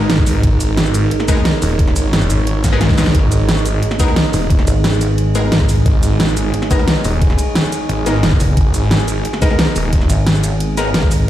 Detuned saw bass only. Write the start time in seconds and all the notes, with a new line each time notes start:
0.10 G#1
0.43 G#1
0.94 G#1
1.62 D#1
1.96 G#1
2.30 G#1
3.15 G#1
3.66 G#1
4.33 D#1
5.86 G#1
6.37 G#1
7.05 D#1
7.89 G#1
8.57 G#1
9.08 G#1
9.76 D#1